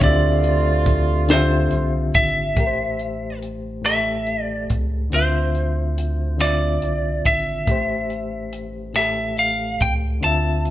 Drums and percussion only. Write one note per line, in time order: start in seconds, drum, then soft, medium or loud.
0.01 kick loud
0.01 closed hi-hat medium
0.44 closed hi-hat soft
0.86 kick medium
0.86 closed hi-hat soft
1.29 snare loud
1.29 closed hi-hat medium
1.71 closed hi-hat soft
2.14 kick loud
2.14 closed hi-hat soft
2.56 kick loud
2.56 closed hi-hat medium
2.99 closed hi-hat soft
3.42 closed hi-hat medium
3.84 finger snap loud
3.84 closed hi-hat medium
4.27 closed hi-hat soft
4.70 kick medium
4.70 closed hi-hat medium
5.12 closed hi-hat medium
5.55 closed hi-hat soft
5.98 closed hi-hat medium
6.39 finger snap loud
6.39 closed hi-hat medium
6.82 closed hi-hat soft
7.25 kick medium
7.25 closed hi-hat medium
7.67 kick medium
7.67 closed hi-hat medium
8.10 closed hi-hat soft
8.53 closed hi-hat medium
8.94 finger snap loud
8.94 closed hi-hat medium
9.37 closed hi-hat soft
9.80 kick loud
9.80 closed hi-hat medium
10.23 closed hi-hat medium
10.65 closed hi-hat soft